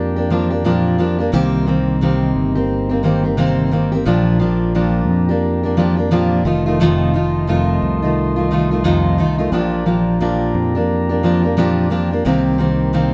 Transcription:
Already playing: F2 A#3 D4 F4 G4 D5 G5 A#5
0.16 A#3 D4 G4
0.30 F3 A#3 D4 G4
0.50 A#3 D4 G4
0.64 A#2 F3 A#3 D4 G4
0.98 F3 A#3 D4 G4
1.18 A#3 D4 G4
1.32 C2 C3 D#3 A#3 C4 D#4 G4 C5 G5
1.66 D#3 A#3 C4 G4
2.01 C3 D#3 A#3 C4 G4
2.36 G1
2.55 A#3 C4 G4
2.89 A#3 C4 G4
3.03 D#3 A#3 C4 G4
3.23 A#3 C4 G4
3.37 C3 D#3 A#3 C4 G4
3.71 D#3 A#3 C4 G4
3.92 A#3 C4 G4
4.05 A#1 A#2 F3 A#3 D4 F4 G4 D5 A#5
4.39 F3 A#3 D4 G4
4.75 A#2 F3 A#3 D4 G4
5.09 F2
5.29 A#3 D4 G4
5.63 A#3 D4 G4
5.77 F3 A#3 D4 G4
5.97 A#3 D4 G4
6.11 A#2 F3 A#3 D4 G4
6.45 F1 D#3 A3 D#4 F4 D#5 A5 C6
6.66 D#3 A3 D#4 F4
6.80 F2 C3 D#3 A3 D#4 F4
7.14 D#3 A3 D#4 F4
7.47 F2 C3 D#3 A3 D#4 F4
7.82 C2
8.02 D#3 A3 D#4 F4
8.36 D#3 A3 D#4 F4
8.51 D#3 A3 D#4 F4
8.71 D#3 A3 D#4 F4
8.84 F2 C3 D#3 A3 D#4 F4
9.18 D#3 A3 D#4 F4
9.38 D#3 A3 D#4 F4
9.52 A#1 A#2 F3 A#3 D4 G4 D5 G5 A#5
9.86 F3 A#3 D4 G4
10.21 A#2 F3 A#3 D4 G4
10.55 F2
10.75 A#3 D4 G4
11.09 A#3 D4 G4
11.23 F3 A#3 D4 G4
11.43 A#3 D4 G4
11.57 A#2 F3 A#3 D4 G4
11.90 F3 A#3 D4 G4
12.11 A#3 D4 G4
12.25 C2 C3 D#3 A#3 C4 D#4 G4 C5 A#5
12.58 D#3 A#3 C4 G4
12.93 C3 D#3 A#3 C4 G4

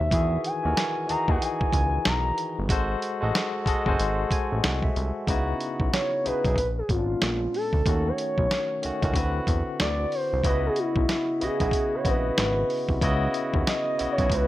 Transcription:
Already playing: B2 A3 D#4 C5 E5
0.01 D#2
0.11 E2 D#3 E3 F#4 G#4, kick, closed hi-hat
0.44 G#5, closed hi-hat
0.63 D#2 E3 D#4 F#4 A#4
0.77 snare, closed hi-hat
1.07 D#2 E3 D#4 F#4 G#4 A#5, closed hi-hat
1.28 D#2 E3 D#4 F#4 G#4 F#5, kick
1.42 G#5, closed hi-hat
1.61 kick
1.73 C#2, kick, closed hi-hat
2.05 B1 A#5, snare, closed hi-hat
2.38 closed hi-hat
2.59 G1
2.69 G#1 G#3 F#4 A4 C5, kick, closed hi-hat
3.02 closed hi-hat
3.21 A1 G#3 F#4 A4 D#5
3.35 snare, closed hi-hat
3.65 F#1 G#3 F#4 A4 D#5 A5, kick, closed hi-hat
3.86 F#1 G#3 F#4 A4 C5 G#5, kick
4.00 G#1 C6, closed hi-hat
4.31 A1 G#5, kick, closed hi-hat
4.52 A1
4.63 C2 F#5, snare, closed hi-hat
4.83 E5, kick
4.96 C2, closed hi-hat
5.27 C#2 C#3 B3 D#4 E4 F#4, kick, closed hi-hat
5.61 closed hi-hat
5.80 B1, kick
5.93 C#5, snare, closed hi-hat
6.24 B1 C#3 B3 D#4 E4 G#4 B4, closed hi-hat
6.44 B1 C#3 B3 D#4 E4 G#4, kick, closed hi-hat
6.56 A#1 B4, kick, closed hi-hat
6.78 G#4
6.89 G#1 A#2 G#3 B3 C#4 F4, kick, closed hi-hat
6.99 D4
7.22 A#1, snare, closed hi-hat
7.54 A4, open hi-hat
7.73 D2, kick
7.86 D#2 D#3 A3 C#4 F#4, kick, closed hi-hat
8.08 C#5
8.18 C#5, closed hi-hat
8.38 B1, kick
8.51 snare, closed hi-hat
8.82 C#2 D#3 A3 C#4 F#4, closed hi-hat
9.02 C#2 D#3 A3 C#4 F#4, kick, closed hi-hat
9.14 D2 D3 C4 E4 F#4 B4, kick, closed hi-hat
9.47 E2, kick, closed hi-hat
9.80 D2 D5, snare, closed hi-hat
10.12 C5, open hi-hat
10.33 C2
10.43 C#2 C#3 B3 E4 F#4 B4 D#5, kick, closed hi-hat
10.66 G#4
10.76 E4, closed hi-hat
10.96 B1, kick
11.09 snare, closed hi-hat
11.40 B1 C#3 B3 E4 F#4 G#4 D#5, closed hi-hat
11.60 B1 C#3 B3 E4 F#4 B4, kick, closed hi-hat
11.71 kick, closed hi-hat
11.95 C#5
12.04 A#1 C#3 B3 E4 F#4 D#5, kick, closed hi-hat
12.09 B4
12.38 G#1, snare, closed hi-hat
12.70 open hi-hat
12.89 C2, kick
13.01 C#2 C#3 B3 E4 F#4 D#5, kick, closed hi-hat
13.34 closed hi-hat
13.54 D#2, kick
13.67 D#5, snare, closed hi-hat
13.98 B1 C#3 B3 E4 F#4 D#5, closed hi-hat
14.12 C#5
14.17 B1 C#3 B3 E4 F#4 G#4, kick, closed hi-hat
14.30 C#2, kick, closed hi-hat
14.34 B4

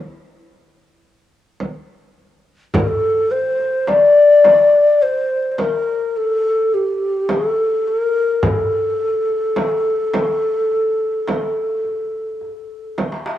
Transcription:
1.60 frame drum
2.74 A4, darbuka dum, frame drum
2.80 A#4
2.88 A4
3.02 darbuka ka
3.31 C5, darbuka ka
3.59 darbuka ka
3.87 D5, darbuka tek, frame drum
4.44 darbuka tek, frame drum
4.73 darbuka ka
5.02 C5, darbuka ka
5.52 C5
5.58 A#4, darbuka tek, frame drum
6.17 A4
6.72 G4, darbuka ka
7.29 A4, darbuka tek, frame drum
7.88 A#4
8.43 A4, frame drum, darbuka dum
8.72 darbuka ka
9.00 darbuka ka
9.29 darbuka ka
9.56 darbuka tek, frame drum
9.85 darbuka ka
10.14 darbuka tek, frame drum
10.71 darbuka ka
11.28 darbuka tek, frame drum
11.84 darbuka ka
12.41 darbuka ka
12.98 darbuka tek, frame drum
13.12 darbuka ka
13.26 darbuka tek

